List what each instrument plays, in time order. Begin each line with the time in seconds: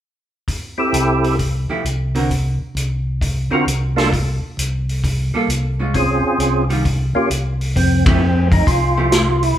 0.48 kick, open hi-hat
0.78 tonewheel organ C4 E4 G4 A4
0.93 tonewheel organ C2, closed hi-hat
1.24 open hi-hat
1.39 kick, open hi-hat
1.70 hollow-body jazz guitar F3 A3 E4 G4
1.84 tonewheel organ C2, closed hi-hat
2.15 hollow-body jazz guitar D3 C4 F#4 A#4, open hi-hat
2.30 kick, open hi-hat
2.75 tonewheel organ C2, closed hi-hat
3.21 kick, open hi-hat
3.51 hollow-body jazz guitar D3 C4 F#4 A#4, tonewheel organ C4 F4 F#4 A#4
3.66 tonewheel organ C2, closed hi-hat
3.96 hollow-body jazz guitar G3 A#3 F4 A4, tonewheel organ A#3 D4 F4 A4, snare, open hi-hat
4.13 kick, open hi-hat
4.57 tonewheel organ C2, closed hi-hat
4.89 open hi-hat
5.04 kick, open hi-hat
5.34 hollow-body jazz guitar G3 A#3 F4 A4
5.47 tonewheel organ C2, closed hi-hat
5.79 hollow-body jazz guitar G#3 C#4 F4
5.94 tonewheel organ C4 C#4 F4 G#4, kick, open hi-hat
6.38 tonewheel organ C2, closed hi-hat
6.69 hollow-body jazz guitar D#3 G3 C#4 F4, open hi-hat
6.85 kick, open hi-hat
7.15 tonewheel organ A#3 C#4 F4 G4
7.30 tonewheel organ C2, closed hi-hat
7.61 open hi-hat
7.76 tonewheel organ F2 C4, kick, open hi-hat
8.06 hollow-body jazz guitar F3 A3 E4 G4, tonewheel organ C4, kick, ride
8.52 tonewheel organ D#4, kick, open hi-hat
8.67 tonewheel organ C2 F4, kick, open hi-hat
8.97 hollow-body jazz guitar F3 A3 E4 G4
9.12 snare, closed hi-hat
9.43 tonewheel organ E4, open hi-hat